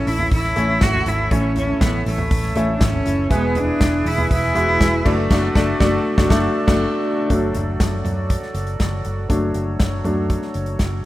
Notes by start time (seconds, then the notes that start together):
Already playing: A2 A3 C#4 E4 A4 C#5 A5
0.07 A1 E4, hi-hat pedal, open hi-hat
0.19 floor tom
0.31 A1 E4, kick, hi-hat pedal, open hi-hat
0.44 snare
0.56 A1 E3 A3 C#4 E4 C#5, hi-hat pedal, open hi-hat
0.68 A3 C#4 E4
0.81 G#1 E3 A3 C#4 E4 F#4, kick, snare, hi-hat pedal, open hi-hat
0.94 floor tom
1.06 G#1 E3 A3 C#4 E4, hi-hat pedal, open hi-hat
1.31 A1 A2 E3 A3 C#4 E4 C#5, kick, hi-hat pedal, open hi-hat
1.56 C#4, floor tom, hi-hat pedal, open hi-hat
1.68 A3 C#4 E4
1.81 A1 B3, kick, snare, hi-hat pedal, open hi-hat
2.06 A1 A3, hi-hat pedal, open hi-hat
2.18 floor tom
2.31 A1, kick, hi-hat pedal, open hi-hat
2.43 snare
2.55 A1 E3 A3 C#4 E4 E5, hi-hat pedal, open hi-hat
2.68 A3 C#4 E4
2.75 D4
2.80 G#1 E3 A3 C#4 E4, kick, snare, hi-hat pedal, open hi-hat
2.93 floor tom
3.06 F#1 E3 A3 C#4 E4, hi-hat pedal, open hi-hat
3.30 E1 E2 B2 E3 G#3 B3 E4 G#4 B4 G#5, kick, hi-hat pedal, open hi-hat
3.55 D4, floor tom, hi-hat pedal, open hi-hat
3.68 E3 G#3 B3 E4
3.81 E1, kick, snare, hi-hat pedal, open hi-hat
4.05 E1 E4, hi-hat pedal, open hi-hat
4.18 floor tom
4.31 E1 E4, kick, hi-hat pedal, open hi-hat
4.43 snare
4.54 E1 E3 G#3 B3 E4 F#4, hi-hat pedal, open hi-hat
4.67 E3 G#3 B3 E4
4.80 E1 E3 G#3 B3 E4, kick, snare, hi-hat pedal, open hi-hat
5.05 F#1 F#3 A3 D4 F#4 A4 D5 A5, kick, crash
5.30 F#1 F#3 A3 D4 F#4 D5, kick, snare, crash
5.55 F#1 A3 D4 F#4 D5, kick, snare
5.80 F#1 A3 D4 F#4 D5, kick, snare
6.17 F#1 F#3 A3 D4 F#4, kick, snare
6.30 F#1 F#3 A3 D4 F#4, kick, snare
6.67 F#1 A3 D4 F#4, kick, snare, crash
7.30 F#1 F#3 A3 D4 F#4 A4 D5, kick, closed hi-hat
7.54 F#1, closed hi-hat, floor tom
7.80 F#1, kick, snare, closed hi-hat
8.04 F#2, closed hi-hat, floor tom
8.30 kick, closed hi-hat
8.42 snare
8.54 F#1, closed hi-hat
8.67 closed hi-hat
8.80 F#1, kick, snare, closed hi-hat
9.05 F#1, closed hi-hat
9.29 F#1 F#3 A3 D4 C#5, kick, closed hi-hat
9.54 F#1, closed hi-hat
9.80 F#1, kick, snare, closed hi-hat
10.04 F#2 F#3 A3 D4, closed hi-hat, floor tom
10.30 kick, closed hi-hat
10.42 snare
10.54 F#1, closed hi-hat
10.66 closed hi-hat
10.79 F#1, kick, snare, closed hi-hat